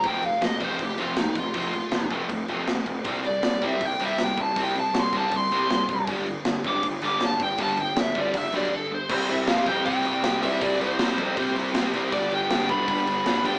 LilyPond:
<<
  \new Staff \with { instrumentName = "Lead electric guitar" } { \time 4/4 \key c \major \tempo 4 = 159 g''8 f''8 ees''8 c''8 g'8 f'8 ees'8 f'8~ | f'4. r2 r8 | r8 d''4 e''8 g''8 e''8 g''8 a''8 | g''8 a''8 c'''8 a''8 c'''2 |
r4. d'''8 r8 d'''8 a''8 g''8 | a''8 g''8 e''8 d''8 e''8 d''8 a'8 c''8 | c''8 e''8 f''8 g''8 g''4. e''8 | d''8 c''2 r4. |
d''8 g''4 b''8 b''4. g''8 | }
  \new Staff \with { instrumentName = "Overdriven electric guitar" } { \clef bass \time 4/4 \key c \major <f a c'>8 <f a>8 <f a>8 <f a c'>8 <f a>8 <f a c'>8 <f a>8 <f a>8 | <f a c'>8 <f a>8 <f a>8 <f a c'>8 <f a>8 <f a c'>8 <f a>8 <f a>8 | <c g c'>8 <c g>8 <c g>8 <c g c'>8 <c g>8 <c g c'>8 <c g>8 <c g>8 | <c g c'>8 <c g>8 <c g>8 <c g c'>8 <c g>8 <c g c'>8 <c g>8 <c g>8 |
<g, d g>8 <g, d>8 <g, d>8 <g, d g>8 <g, d>8 <g, d g>8 <g, d>8 <g, d>8 | <g, d g>8 <g, d>8 <g, d>8 <g, d g>8 <g, d>8 <g, d g>8 <g, d>8 <g, d>8 | <c g c' e'>4 <c g c' e'>8 <c g c' e'>8 <c g c' e'>4 <c g c' e'>8 <c g c' e'>8 | <c g c' e'>4 <c g c' e'>8 <c g c' e'>8 <c g c' e'>4 <c g c' e'>8 <c g c' e'>8 |
<g, d g b d'>4 <g, d g b d'>8 <g, d g b d'>8 <g, d g b d'>4 <g, d g b d'>8 <g, d g b d'>8 | }
  \new Staff \with { instrumentName = "Overdriven electric guitar" } { \clef bass \time 4/4 \key c \major <f, c f>8 <f, c>8 <f, c>8 <f, c f>8 <f, c>8 <f, c f>8 <f, c>8 <f, c>8 | <f, c f>8 <f, c>8 <f, c>8 <f, c f>8 <f, c>8 <f, c f>8 <f, c>8 <f, c>8 | <c g c'>8 <c g>8 <c g>8 <c g c'>8 <c g>8 <c g c'>8 <c g>8 <c g>8 | <c g c'>8 <c g>8 <c g>8 <c g c'>8 <c g>8 <c g c'>8 <c g>8 <c g>8 |
<g, d g>8 <g, d>8 <g, d>8 <g, d g>8 <g, d>8 <g, d g>8 <g, d>8 <g, d>8 | <g, d g>8 <g, d>8 <g, d>8 <g, d g>8 <g, d>8 <g, d g>8 <g, d>8 <g, d>8 | <c g c'>4 <c g c'>8 <c g c'>8 <c g c'>4 <c g c'>8 <c g c'>8 | <c g c'>4 <c g c'>8 <c g c'>8 <c g c'>4 <c g c'>8 <c g c'>8 |
<g, d g>4 <g, d g>8 <g, d g>8 <g, d g>4 <g, d g>8 <g, d g>8 | }
  \new Staff \with { instrumentName = "Picked electric bass" } { \clef bass \time 4/4 \key c \major f,,4 f,,8 f,,8 f,,8 f,,8 f,,8 f,,8 | f,,4 f,,8 f,,8 f,,8 f,,8 f,,8 f,,8 | c,4 c,8 c,8 c,8 c,8 c,8 c,8 | c,4 c,8 c,8 c,8 c,8 c,8 c,8 |
g,,4 g,,8 g,,8 g,,8 g,,8 g,,8 g,,8 | g,,4 g,,8 g,,8 g,,8 b,,8 r4 | c,8 c,8 c,8 f,8 c8 c,8 c,8 c,8 | c,8 c,8 c,8 f,8 c8 c,8 c,8 c,8 |
g,,8 g,,8 g,,8 c,8 g,8 g,,8 g,,8 g,,8 | }
  \new DrumStaff \with { instrumentName = "Drums" } \drummode { \time 4/4 <cymc bd>8 cymc8 <cymc sn>8 <cymc bd>8 <cymc bd>8 cymc8 <cymc sn>8 <cymc bd>8 | <cymc bd>8 cymc8 <cymc sn>8 <cymc bd>8 <cymc bd>8 cymc8 <cymc sn>8 <cymc bd>8 | <cymc bd>8 cymc8 <cymc sn>8 <cymc bd>8 <cymc bd>8 cymc8 <cymc sn>8 <cymc bd>8 | <cymc bd>8 cymc8 <cymc sn>8 <cymc bd>8 <cymc bd>8 cymc8 <cymc sn>8 <cymc bd>8 |
<cymc bd>8 cymc8 <cymc sn>8 <cymc bd>8 <cymc bd>8 cymc8 <cymc sn>8 <cymc bd>8 | <cymc bd>8 cymc8 <cymc sn>8 <cymc bd>8 <cymc bd>8 cymc8 r4 | <cymc bd>8 cymc8 <cymc sn>8 <cymc bd>8 <cymc bd>8 cymc8 <cymc sn>8 cymc8 | <cymc bd>8 cymc8 <cymc sn>8 <cymc bd>8 <cymc bd>8 cymc8 <cymc sn>8 cymc8 |
<cymc bd>8 cymc8 <cymc sn>8 <cymc bd>8 <cymc bd>8 cymc8 <cymc sn>8 cymc8 | }
>>